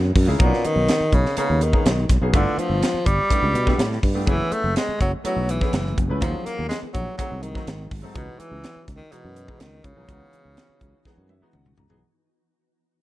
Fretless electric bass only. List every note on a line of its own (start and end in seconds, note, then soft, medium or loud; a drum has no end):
0.00 0.14 F#2 medium
0.16 0.27 F#2 medium
0.28 0.39 C#2 medium
0.40 0.51 B1 medium
0.65 muted fretless electric bass stroke soft
0.76 0.87 B1 medium
1.00 muted fretless electric bass stroke soft
1.13 1.24 B1 medium
1.37 muted fretless electric bass stroke soft
1.50 1.72 D#2 medium
1.73 muted fretless electric bass stroke soft
1.86 2.08 B1 medium
2.10 2.21 B1 medium
2.22 2.33 B1 medium
2.34 2.45 G1 medium
2.58 muted fretless electric bass stroke soft
2.70 2.81 G1 medium
2.94 muted fretless electric bass stroke soft
3.06 3.18 G1 medium
3.31 muted fretless electric bass stroke soft
3.43 3.53 C#2 medium
3.54 3.76 B2 medium
3.79 4.01 A2 medium
4.03 4.25 G2 medium
4.27 4.39 F#1 medium
4.52 muted fretless electric bass stroke soft
4.64 4.75 F#1 medium
4.88 muted fretless electric bass stroke soft
5.01 5.12 F#1 medium
5.24 muted fretless electric bass stroke soft
5.36 5.60 B1 medium
5.61 muted fretless electric bass stroke soft
5.73 5.96 F#1 medium
5.98 6.09 F#1 medium
6.10 6.21 C#2 medium
6.22 6.33 D#2 medium
6.47 muted fretless electric bass stroke soft
6.59 6.70 D#2 medium
6.83 muted fretless electric bass stroke soft
6.95 7.06 A#1 medium
7.19 muted fretless electric bass stroke soft
7.32 7.54 C2 medium
7.55 muted fretless electric bass stroke soft
7.68 7.90 G#1 medium
7.91 8.03 G#1 medium
8.04 8.15 G#2 medium
8.16 8.27 C#2 medium
8.39 muted fretless electric bass stroke soft
8.51 8.63 C#2 medium
8.76 muted fretless electric bass stroke soft
8.88 8.99 C#2 medium
9.13 muted fretless electric bass stroke soft
9.24 9.47 F#2 medium
9.48 muted fretless electric bass stroke soft
9.61 9.83 C#2 medium
9.84 9.96 C#2 medium
9.97 10.08 B1 medium
10.09 10.20 C#2 medium
10.33 muted fretless electric bass stroke soft
10.45 10.56 C#2 medium
10.69 muted fretless electric bass stroke soft
10.81 10.93 C#2 medium
11.05 muted fretless electric bass stroke soft
11.17 11.40 F#2 medium
11.42 muted fretless electric bass stroke soft
11.55 11.77 C#2 medium
11.79 11.90 C#2 medium
11.91 12.02 B1 medium